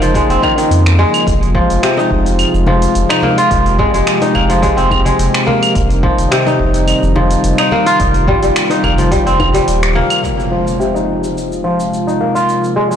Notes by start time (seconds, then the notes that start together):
Already playing: F1 C#3 F3 G#3 A#3 D#4 F4
0.02 F3, open hi-hat, shaker
0.15 G#3, kick, open hi-hat, shaker
0.29 F1 C4, open hi-hat, shaker
0.43 D#3, kick, claves
0.58 D#3, open hi-hat, shaker
0.70 F2, open hi-hat, shaker
0.86 finger snap, open hi-hat, shaker
0.99 G#3
1.14 open hi-hat, claves, shaker
1.26 F1 C3 G#3 F4, kick, open hi-hat, shaker
1.43 open hi-hat, shaker
1.55 F3, kick
1.70 F1, open hi-hat, shaker
1.83 C3, finger snap, open hi-hat, shaker
1.97 D#4, high bongo, shaker
2.11 F1, kick
2.26 open hi-hat, shaker
2.39 open hi-hat, claves, shaker
2.54 F1, shaker
2.66 F3, high bongo, high conga
2.82 open hi-hat, shaker
2.95 F1, open hi-hat, shaker
3.09 D#4, finger snap, open hi-hat, claves, shaker
3.23 A#3, high conga
3.38 F4, open hi-hat, shaker
3.50 F1 G4, kick, open hi-hat, shaker
3.66 open hi-hat, shaker
3.78 G#3, kick, low conga
3.94 F1 G#3, open hi-hat, shaker
4.07 finger snap, open hi-hat, shaker
4.21 D#4, open hi-hat, high bongo, shaker
4.35 F1 A#3, kick, claves
4.50 F3, open hi-hat, shaker
4.62 G#3, kick, open hi-hat, shaker
4.77 F1 C4, open hi-hat, shaker
4.91 kick, high bongo, claves
5.05 G#3, open hi-hat, high conga, shaker
5.19 F1, open hi-hat, shaker
5.34 finger snap, open hi-hat, shaker
5.47 A#3, high conga
5.63 open hi-hat, claves, shaker
5.75 F1 D#3 G3 D#4, kick, open hi-hat, shaker
5.90 open hi-hat, shaker
6.03 F3, kick
6.18 F1, open hi-hat, shaker
6.31 C3, finger snap, open hi-hat, shaker
6.47 D#4, high bongo, shaker
6.59 F1, kick
6.74 open hi-hat, shaker
6.88 open hi-hat, claves, shaker
7.03 F1, shaker
7.16 F3, high bongo, high conga
7.31 open hi-hat, shaker
7.44 F1, open hi-hat, shaker
7.58 D#4, finger snap, open hi-hat, claves, shaker
7.72 A#3, high conga
7.86 F4, open hi-hat, shaker
8.00 F1 F4, kick, open hi-hat, shaker
8.14 open hi-hat, shaker
8.28 G3, kick, low conga
8.42 F1 G3, open hi-hat, shaker
8.56 finger snap, open hi-hat, shaker
8.70 D#4, open hi-hat, high bongo, shaker
8.83 F1 A#3, kick, claves
8.98 F3, open hi-hat, high conga, shaker
9.11 G3, kick, open hi-hat, shaker
9.26 F1 C4, open hi-hat, shaker
9.40 kick, high bongo, claves
9.54 G3, open hi-hat, high conga, shaker
9.68 D#1, open hi-hat, shaker
9.83 finger snap, open hi-hat, shaker
9.95 A#3, high conga
10.10 open hi-hat, claves, shaker
10.24 C3 F3 G#3 F4, impact, shaker
10.40 shaker
10.51 F3
10.68 shaker
10.80 C3, shaker
10.95 D#4, shaker
11.24 shaker
11.38 shaker
11.52 shaker
11.64 F3
11.80 shaker
11.94 shaker
12.07 D#4, shaker
12.21 A#3
12.35 F4, shaker
12.49 shaker
12.64 shaker
12.76 G#3
12.91 G#3, shaker